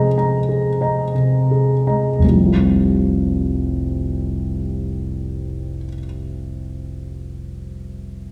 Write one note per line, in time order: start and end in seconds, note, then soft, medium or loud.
0.00 2.19 F2 soft
0.00 1.15 C3 soft
0.00 0.37 G#3 soft
0.00 0.49 G#4 soft
0.00 0.81 D#5 soft
0.00 0.18 A#5 soft
0.00 2.20 G6 soft
0.00 2.22 A#6 soft
0.00 2.23 D#7 soft
0.18 0.69 A#5 soft
0.49 1.02 G#4 soft
0.81 1.12 D#5 soft
0.81 1.13 A#5 soft
1.15 1.73 C3 soft
1.51 2.08 G#4 soft
1.87 2.21 G#3 soft
1.87 2.18 D#5 soft
1.87 2.18 A#5 soft
2.19 5.77 F1 soft
2.24 5.83 C2 soft
2.30 5.88 F3 soft
2.35 5.94 G3 soft
2.40 5.99 C4 soft
2.46 6.05 F4 soft